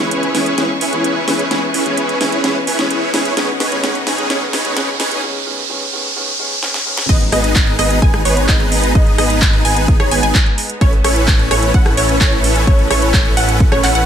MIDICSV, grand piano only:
0, 0, Header, 1, 2, 480
1, 0, Start_track
1, 0, Tempo, 465116
1, 1558, Time_signature, 4, 2, 24, 8
1, 14507, End_track
2, 0, Start_track
2, 0, Title_t, "Grand piano"
2, 0, Program_c, 0, 0
2, 0, Note_on_c, 0, 52, 70
2, 0, Note_on_c, 0, 56, 66
2, 0, Note_on_c, 0, 59, 66
2, 3, Note_on_c, 0, 61, 79
2, 216, Note_off_c, 0, 52, 0
2, 218, Note_off_c, 0, 56, 0
2, 220, Note_off_c, 0, 59, 0
2, 222, Note_off_c, 0, 61, 0
2, 351, Note_on_c, 0, 52, 77
2, 356, Note_on_c, 0, 56, 70
2, 359, Note_on_c, 0, 59, 68
2, 363, Note_on_c, 0, 61, 83
2, 493, Note_off_c, 0, 52, 0
2, 495, Note_off_c, 0, 56, 0
2, 497, Note_off_c, 0, 59, 0
2, 499, Note_off_c, 0, 61, 0
2, 592, Note_on_c, 0, 52, 82
2, 596, Note_on_c, 0, 56, 79
2, 600, Note_on_c, 0, 59, 78
2, 604, Note_on_c, 0, 61, 93
2, 733, Note_off_c, 0, 52, 0
2, 735, Note_off_c, 0, 56, 0
2, 737, Note_off_c, 0, 59, 0
2, 739, Note_off_c, 0, 61, 0
2, 951, Note_on_c, 0, 52, 73
2, 954, Note_on_c, 0, 56, 67
2, 958, Note_on_c, 0, 59, 70
2, 963, Note_on_c, 0, 61, 83
2, 1176, Note_off_c, 0, 52, 0
2, 1177, Note_off_c, 0, 56, 0
2, 1180, Note_off_c, 0, 59, 0
2, 1182, Note_off_c, 0, 61, 0
2, 1310, Note_on_c, 0, 52, 79
2, 1314, Note_on_c, 0, 56, 73
2, 1319, Note_on_c, 0, 59, 70
2, 1323, Note_on_c, 0, 61, 89
2, 1453, Note_off_c, 0, 52, 0
2, 1455, Note_off_c, 0, 56, 0
2, 1457, Note_off_c, 0, 59, 0
2, 1459, Note_off_c, 0, 61, 0
2, 1549, Note_on_c, 0, 52, 85
2, 1554, Note_on_c, 0, 56, 78
2, 1558, Note_on_c, 0, 59, 78
2, 1562, Note_on_c, 0, 61, 94
2, 1692, Note_off_c, 0, 52, 0
2, 1694, Note_off_c, 0, 56, 0
2, 1696, Note_off_c, 0, 59, 0
2, 1699, Note_off_c, 0, 61, 0
2, 1911, Note_on_c, 0, 52, 75
2, 1916, Note_on_c, 0, 56, 67
2, 1919, Note_on_c, 0, 59, 70
2, 1923, Note_on_c, 0, 61, 82
2, 2136, Note_off_c, 0, 52, 0
2, 2138, Note_off_c, 0, 56, 0
2, 2140, Note_off_c, 0, 59, 0
2, 2142, Note_off_c, 0, 61, 0
2, 2272, Note_on_c, 0, 52, 79
2, 2276, Note_on_c, 0, 56, 74
2, 2280, Note_on_c, 0, 59, 72
2, 2284, Note_on_c, 0, 61, 88
2, 2413, Note_off_c, 0, 52, 0
2, 2415, Note_off_c, 0, 56, 0
2, 2417, Note_off_c, 0, 59, 0
2, 2419, Note_off_c, 0, 61, 0
2, 2512, Note_on_c, 0, 52, 89
2, 2516, Note_on_c, 0, 56, 79
2, 2520, Note_on_c, 0, 59, 80
2, 2524, Note_on_c, 0, 61, 100
2, 2653, Note_off_c, 0, 52, 0
2, 2655, Note_off_c, 0, 56, 0
2, 2657, Note_off_c, 0, 59, 0
2, 2660, Note_off_c, 0, 61, 0
2, 2870, Note_on_c, 0, 52, 76
2, 2874, Note_on_c, 0, 56, 70
2, 2878, Note_on_c, 0, 59, 71
2, 2883, Note_on_c, 0, 61, 84
2, 3096, Note_off_c, 0, 52, 0
2, 3098, Note_off_c, 0, 56, 0
2, 3100, Note_off_c, 0, 59, 0
2, 3102, Note_off_c, 0, 61, 0
2, 3230, Note_on_c, 0, 52, 80
2, 3234, Note_on_c, 0, 56, 74
2, 3239, Note_on_c, 0, 59, 74
2, 3242, Note_on_c, 0, 61, 92
2, 3372, Note_off_c, 0, 52, 0
2, 3374, Note_off_c, 0, 56, 0
2, 3377, Note_off_c, 0, 59, 0
2, 3379, Note_off_c, 0, 61, 0
2, 3470, Note_on_c, 0, 51, 90
2, 3475, Note_on_c, 0, 56, 81
2, 3478, Note_on_c, 0, 59, 83
2, 3483, Note_on_c, 0, 61, 97
2, 3613, Note_off_c, 0, 51, 0
2, 3615, Note_off_c, 0, 56, 0
2, 3617, Note_off_c, 0, 59, 0
2, 3619, Note_off_c, 0, 61, 0
2, 3831, Note_on_c, 0, 51, 81
2, 3835, Note_on_c, 0, 56, 71
2, 3839, Note_on_c, 0, 59, 72
2, 3843, Note_on_c, 0, 61, 88
2, 3934, Note_off_c, 0, 51, 0
2, 3938, Note_off_c, 0, 56, 0
2, 3940, Note_off_c, 0, 59, 0
2, 3942, Note_off_c, 0, 61, 0
2, 3949, Note_on_c, 0, 51, 91
2, 3954, Note_on_c, 0, 56, 84
2, 3957, Note_on_c, 0, 59, 84
2, 3962, Note_on_c, 0, 61, 102
2, 4092, Note_off_c, 0, 51, 0
2, 4094, Note_off_c, 0, 56, 0
2, 4096, Note_off_c, 0, 59, 0
2, 4098, Note_off_c, 0, 61, 0
2, 4311, Note_on_c, 0, 51, 80
2, 4315, Note_on_c, 0, 56, 75
2, 4319, Note_on_c, 0, 59, 74
2, 4323, Note_on_c, 0, 61, 86
2, 4416, Note_off_c, 0, 51, 0
2, 4417, Note_off_c, 0, 56, 0
2, 4420, Note_off_c, 0, 59, 0
2, 4422, Note_off_c, 0, 61, 0
2, 4432, Note_on_c, 0, 51, 93
2, 4436, Note_on_c, 0, 56, 85
2, 4440, Note_on_c, 0, 59, 84
2, 4445, Note_on_c, 0, 61, 103
2, 4574, Note_off_c, 0, 51, 0
2, 4576, Note_off_c, 0, 56, 0
2, 4578, Note_off_c, 0, 59, 0
2, 4580, Note_off_c, 0, 61, 0
2, 4791, Note_on_c, 0, 51, 80
2, 4796, Note_on_c, 0, 56, 73
2, 4800, Note_on_c, 0, 59, 75
2, 4804, Note_on_c, 0, 61, 88
2, 4896, Note_off_c, 0, 51, 0
2, 4898, Note_off_c, 0, 56, 0
2, 4900, Note_off_c, 0, 59, 0
2, 4902, Note_off_c, 0, 61, 0
2, 4912, Note_on_c, 0, 51, 97
2, 4916, Note_on_c, 0, 56, 87
2, 4920, Note_on_c, 0, 59, 89
2, 4924, Note_on_c, 0, 61, 107
2, 5053, Note_off_c, 0, 51, 0
2, 5055, Note_off_c, 0, 56, 0
2, 5058, Note_off_c, 0, 59, 0
2, 5060, Note_off_c, 0, 61, 0
2, 5273, Note_on_c, 0, 51, 84
2, 5277, Note_on_c, 0, 56, 76
2, 5281, Note_on_c, 0, 59, 77
2, 5286, Note_on_c, 0, 61, 92
2, 5377, Note_off_c, 0, 51, 0
2, 5379, Note_off_c, 0, 56, 0
2, 5381, Note_off_c, 0, 59, 0
2, 5383, Note_off_c, 0, 61, 0
2, 5393, Note_on_c, 0, 51, 94
2, 5397, Note_on_c, 0, 56, 86
2, 5402, Note_on_c, 0, 59, 84
2, 5405, Note_on_c, 0, 61, 103
2, 5534, Note_off_c, 0, 51, 0
2, 5536, Note_off_c, 0, 56, 0
2, 5538, Note_off_c, 0, 59, 0
2, 5540, Note_off_c, 0, 61, 0
2, 5631, Note_on_c, 0, 51, 98
2, 5636, Note_on_c, 0, 56, 90
2, 5640, Note_on_c, 0, 59, 87
2, 5644, Note_on_c, 0, 61, 105
2, 5773, Note_off_c, 0, 51, 0
2, 5776, Note_off_c, 0, 56, 0
2, 5778, Note_off_c, 0, 59, 0
2, 5780, Note_off_c, 0, 61, 0
2, 5871, Note_on_c, 0, 51, 98
2, 5876, Note_on_c, 0, 56, 87
2, 5880, Note_on_c, 0, 59, 87
2, 5885, Note_on_c, 0, 61, 104
2, 6013, Note_off_c, 0, 51, 0
2, 6015, Note_off_c, 0, 56, 0
2, 6018, Note_off_c, 0, 59, 0
2, 6020, Note_off_c, 0, 61, 0
2, 6113, Note_on_c, 0, 51, 94
2, 6117, Note_on_c, 0, 56, 87
2, 6121, Note_on_c, 0, 59, 88
2, 6126, Note_on_c, 0, 61, 103
2, 6254, Note_off_c, 0, 51, 0
2, 6256, Note_off_c, 0, 56, 0
2, 6258, Note_off_c, 0, 59, 0
2, 6260, Note_off_c, 0, 61, 0
2, 6352, Note_on_c, 0, 51, 95
2, 6356, Note_on_c, 0, 56, 87
2, 6360, Note_on_c, 0, 59, 87
2, 6365, Note_on_c, 0, 61, 104
2, 6494, Note_off_c, 0, 51, 0
2, 6496, Note_off_c, 0, 56, 0
2, 6498, Note_off_c, 0, 59, 0
2, 6500, Note_off_c, 0, 61, 0
2, 6593, Note_on_c, 0, 51, 95
2, 6597, Note_on_c, 0, 56, 91
2, 6601, Note_on_c, 0, 59, 87
2, 6605, Note_on_c, 0, 61, 106
2, 6734, Note_off_c, 0, 51, 0
2, 6736, Note_off_c, 0, 56, 0
2, 6738, Note_off_c, 0, 59, 0
2, 6740, Note_off_c, 0, 61, 0
2, 6832, Note_on_c, 0, 51, 101
2, 6837, Note_on_c, 0, 56, 91
2, 6840, Note_on_c, 0, 59, 91
2, 6845, Note_on_c, 0, 61, 109
2, 6974, Note_off_c, 0, 51, 0
2, 6976, Note_off_c, 0, 56, 0
2, 6977, Note_off_c, 0, 59, 0
2, 6980, Note_off_c, 0, 61, 0
2, 7072, Note_on_c, 0, 51, 96
2, 7076, Note_on_c, 0, 56, 89
2, 7080, Note_on_c, 0, 59, 90
2, 7084, Note_on_c, 0, 61, 107
2, 7213, Note_off_c, 0, 51, 0
2, 7215, Note_off_c, 0, 56, 0
2, 7218, Note_off_c, 0, 59, 0
2, 7220, Note_off_c, 0, 61, 0
2, 14507, End_track
0, 0, End_of_file